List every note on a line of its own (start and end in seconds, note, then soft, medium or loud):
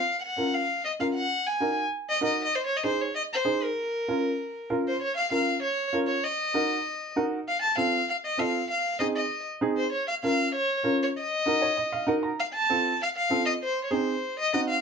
0.00 0.21 F5 medium
0.22 0.56 F#5 medium
0.37 0.59 C#4 medium
0.37 0.60 F4 medium
0.37 0.60 A#4 medium
0.54 0.85 F5 medium
0.85 0.92 D#5 medium
0.99 1.21 C#4 medium
0.99 1.22 F4 medium
0.99 1.22 A#4 medium
0.99 1.07 F5 medium
1.14 1.48 F#5 medium
1.47 1.77 G#5 medium
1.60 1.83 D#4 medium
1.60 1.83 F#4 medium
1.60 1.83 A#4 medium
2.09 2.23 D#5 medium
2.21 2.44 D#4 medium
2.21 2.44 F#4 medium
2.21 2.44 A#4 medium
2.21 2.38 D#5 medium
2.44 2.57 D#5 medium
2.55 2.65 C5 medium
2.66 2.78 C#5 medium
2.77 2.86 D#5 medium
2.84 3.06 D#4 medium
2.84 3.06 G#4 medium
2.84 3.06 C5 medium
2.84 3.03 C5 medium
3.01 3.15 C#5 medium
3.15 3.22 D#5 medium
3.33 3.65 C5 medium
3.45 3.67 D#4 medium
3.45 3.67 G#4 medium
3.45 3.68 C5 medium
3.63 4.70 A#4 medium
4.08 4.30 C#4 medium
4.08 4.30 F4 medium
4.08 4.30 A#4 medium
4.70 4.91 C#4 medium
4.70 4.92 F4 medium
4.70 4.92 A#4 medium
4.88 5.01 C5 medium
5.02 5.16 C#5 medium
5.17 5.31 F5 loud
5.30 5.53 C#4 medium
5.30 5.53 F4 medium
5.30 5.53 A#4 medium
5.30 5.61 F5 medium
5.63 5.91 C#5 medium
5.93 6.14 C#4 medium
5.93 6.14 F4 medium
5.93 6.15 A#4 medium
6.07 6.25 C#5 medium
6.24 7.16 D#5 medium
6.54 6.76 D#4 medium
6.54 6.76 F#4 medium
6.54 6.76 A#4 medium
7.16 7.38 D#4 medium
7.16 7.38 F#4 medium
7.16 7.38 A#4 medium
7.48 7.61 F5 loud
7.62 7.76 A5 loud
7.77 7.99 C4 medium
7.77 7.99 F4 medium
7.77 7.99 A4 medium
7.77 8.07 F5 loud
8.10 8.17 F5 medium
8.26 8.41 D#5 medium
8.37 8.60 C4 medium
8.37 8.60 F4 medium
8.37 8.61 A4 medium
8.37 8.70 F5 medium
8.71 8.99 F5 medium
8.99 9.21 C4 medium
8.99 9.22 D#4 medium
8.99 9.22 G#4 medium
8.99 9.07 D#5 medium
9.15 9.44 D#5 medium
9.61 9.83 C4 medium
9.61 9.83 D#4 medium
9.61 9.84 G#4 medium
9.77 9.91 C5 medium
9.92 10.07 C#5 medium
10.08 10.15 F5 medium
10.23 10.45 C#4 medium
10.23 10.45 F4 medium
10.23 10.45 A#4 medium
10.23 10.53 F5 medium
10.55 10.84 C#5 loud
10.83 11.06 C#4 medium
10.83 11.06 F4 medium
10.83 11.06 A#4 medium
11.03 11.09 C#5 medium
11.18 12.05 D#5 medium
11.46 11.68 D#4 medium
11.46 11.68 F#4 medium
11.46 11.68 A#4 medium
11.62 11.76 C#5 medium
11.77 11.92 D#5 medium
11.92 12.07 F5 medium
12.07 12.29 D#4 medium
12.07 12.29 F#4 medium
12.07 12.30 A#4 medium
12.07 12.22 F#5 medium
12.23 12.37 A#5 medium
12.40 12.47 F5 medium
12.53 12.97 A5 loud
12.70 12.91 C4 medium
12.70 12.91 F4 medium
12.70 12.91 A4 medium
13.03 13.09 F5 loud
13.16 13.45 F5 loud
13.30 13.52 C4 medium
13.30 13.52 F4 medium
13.30 13.52 A4 medium
13.46 13.53 D#5 medium
13.64 13.83 C5 medium
13.84 13.93 C#5 medium
13.91 14.13 C4 medium
13.91 14.13 D#4 medium
13.91 14.13 G#4 medium
13.91 14.38 C5 medium
14.39 14.53 D#5 medium
14.53 14.75 C4 medium
14.53 14.75 D#4 medium
14.53 14.76 F#4 medium
14.53 14.60 D#5 loud
14.69 14.81 F5 loud